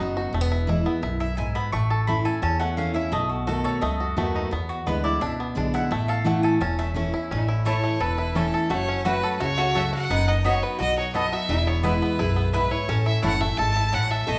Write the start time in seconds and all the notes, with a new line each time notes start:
Already playing: F#3 B3 B4
0.00 F#1 B3 D#4 F#4
0.17 F#4
0.33 E1 E2 A3
0.41 B3
0.52 E4
0.67 E3 G#3 B3 E4
0.85 B3 E4
1.02 B1 F#2 E4
1.20 E4 E5
1.37 G#2 E4 G#5
1.55 B3 B5
1.72 A1 A2 A3 C#6
1.90 A4
2.07 E3 A3 C#4 E4 B5
2.25 C#4 E4 A4 G#5
2.42 E2 C#4 A5
2.60 A3 F#5
2.77 E3 A3 C#4 E4 F5
2.93 C#4 E4 E5
3.12 B1 B2 A3 D#5
3.29 F#4
3.47 D#3 A3 B3 F#4 A4
3.64 A4 C#5
3.81 C#2 F#2 A3 D#5
4.00 F#4
4.17 D#2 D#3 A3 B3 F#4
4.36 D#4
4.51 E2 B3
4.69 F#4
4.86 D2 D3 G#3 B3 E4 B4
5.04 E4 D5
5.21 C#2 B2 D4 E5
5.40 B3
5.55 B1 D3 G#3 B3 D4 E4
5.74 E4 F#5
5.91 A1 A2 A3 E5
6.08 A4 F5
6.24 E3 A3 C#4 E4 F#5
6.43 A4 G#5
6.61 E1 E2 C#4 A5
6.79 A3 E5
6.94 E3 A3 C#4 E4
7.14 C#4 E4
7.31 A1 A2 C#4 E4
7.49 E4
7.65 E3 A3 C#4 E4 A4 C#5 A5
7.84 A3
8.00 E1 E2 A4 B4
8.18 E4
8.28 D4
8.35 E3 A3 C#4 E4 A4 C#5 A5
8.54 A4
8.69 F#1 F#2 A3 F#4 C#5
8.89 C#4
9.05 F#3 A3 C#4 F#4 B4 C#5 F#5
9.23 A4
9.40 C#2 C#3 E4 F#4 C#5
9.58 A3 F#4
9.74 F#3 A3 C#4 F#4 A4 C#5 E5 F#5
9.93 C#4 F#4 F#5
10.10 F#1 F#2 B3 D#4
10.28 D#4 D#5
10.44 F#3 B3 D#4 F#4 C#5 D#5 B5
10.62 B3 B4
10.79 B1 F#3 F#4 D#5
10.98 D#4 C#5
11.14 F#3 B3 D#4 F#4 A4 D#5 B5
11.33 F#4 E5
11.49 E1 E2 E3 E4
11.67 B3 C#5
11.83 E3 G#3 B3 E4 B4 G#5
12.02 B3
12.19 B1 F#2 E4 G#4
12.36 B3
12.53 G#2 B3 E4 B4 G#5
12.71 E4 C#5
12.88 A1 A2 C#4 A4
13.06 E4 E5
13.22 F#1 E3 A3 C#4 E4 A4 C#5 F#5 A5
13.41 A3 C#4 E4 E5
13.58 G#1 G#2 A4 A5
13.76 E4
13.92 A1 A2 A3 C#4 E4 C#5 F#5 A5
14.11 A4 E5
14.27 B1 B2 A3 A4 D#5